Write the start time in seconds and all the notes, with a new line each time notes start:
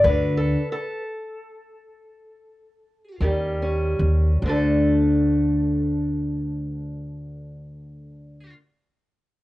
0.04 D2 D3 D4 F#4 B4
0.37 A4
0.72 A4
3.20 D#2 D#3 G3 C#4 G4
3.62 C#4
3.99 D#2
4.42 D2 D3
4.48 A3 D4 A4